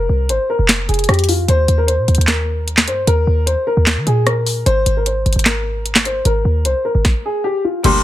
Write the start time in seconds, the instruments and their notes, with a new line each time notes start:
Already playing: grand piano A#4
0.09 808-style bass C2
0.29 808-style bass G#1, grand piano C5, closed hi-hat
0.50 grand piano A#4
0.59 808-style bass F1
0.69 snare, clap, closed hi-hat
0.89 808-style bass F1, grand piano G#4, closed hi-hat
0.94 closed hi-hat
0.99 closed hi-hat
1.04 closed hi-hat
1.09 808-style bass F2, grand piano G4, cross-stick, closed hi-hat
1.14 closed hi-hat
1.19 closed hi-hat
1.24 closed hi-hat
1.29 grand piano F4, open hi-hat
1.48 808-style bass D#2, grand piano C5, closed hi-hat
1.68 808-style bass D#2, closed hi-hat
1.78 grand piano A#4
1.87 grand piano C5, closed hi-hat
1.98 808-style bass A#2
2.08 808-style bass D#2, closed hi-hat
2.15 808-style bass D#2, closed hi-hat
2.21 closed hi-hat
2.27 grand piano A#4, snare, clap, closed hi-hat
2.68 closed hi-hat
2.77 snare, clap
2.87 808-style bass G2, grand piano C5, closed hi-hat
3.07 808-style bass D#2, grand piano A#4, closed hi-hat
3.27 808-style bass D#2
3.46 grand piano C5, closed hi-hat
3.67 grand piano A#4
3.77 808-style bass D#2
3.86 snare, clap, closed hi-hat
3.97 808-style bass D#3
4.07 808-style bass A#2, grand piano G#4, closed hi-hat
4.27 grand piano A#4, cross-stick, closed hi-hat
4.46 open hi-hat
4.66 808-style bass G#1, grand piano C5, closed hi-hat
4.86 808-style bass G#1, closed hi-hat
4.97 grand piano A#4
5.06 grand piano C5, closed hi-hat
5.26 808-style bass G#1, closed hi-hat
5.33 808-style bass G#1, closed hi-hat
5.39 closed hi-hat
5.45 grand piano A#4, snare, clap, closed hi-hat
5.86 closed hi-hat
5.95 snare, clap
6.05 grand piano C5, closed hi-hat
6.25 808-style bass G#1, grand piano A#4, closed hi-hat
6.45 808-style bass D#2
6.65 808-style bass C2, grand piano C5, closed hi-hat
6.85 grand piano A#4
6.95 808-style bass G#1
7.05 kick, snare
7.25 grand piano G#4
7.44 grand piano G4
7.64 grand piano F4
7.84 808-style bass G1, string section D2 A#2 G3, accordion G3 D4 A#4, grand piano C6, closed hi-hat, crash